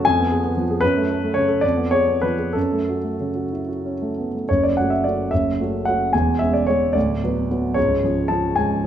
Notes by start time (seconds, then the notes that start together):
0.05 F2 G#5
0.19 B3
0.32 G#4
0.44 B3
0.57 F3
0.70 G#4
0.81 F#2 B4
0.97 A3
1.10 A4
1.23 A3
1.34 C#3 C#5
1.48 A4
1.61 F2 D5
1.77 B3
1.91 G#4 C#5
2.08 B3
2.22 F3 B4
2.38 G#4
2.53 F#2 A4
2.72 A3
2.89 F#4
3.04 A3
3.20 C#3
3.35 F#4
3.52 E4
3.68 F#4
3.85 C#4
4.02 A3
4.18 B3
4.35 A3
4.49 F#1 F#2 C#5
4.63 D5
4.77 A3 C#4 F#4 F#5
4.90 E5
5.04 A3 C#4 F#4 D5
5.31 F#1 F#2 E5
5.60 A3 C#4 F#4
5.85 A3 C#4 F#4 F#5
6.13 E1 E2 G#5
6.39 G#3 C#4 G#4 E5
6.53 D5
6.67 G#3 C#4 G#4 C#5
6.93 D1 D2 D5
7.24 F#3 B3 B4
7.51 F#3 B3 B4
7.74 C#1 C#2 C#5
8.04 F3 C#4 G#4
8.28 F3 C#4 G#4 A5
8.56 C#1 C#2 G#5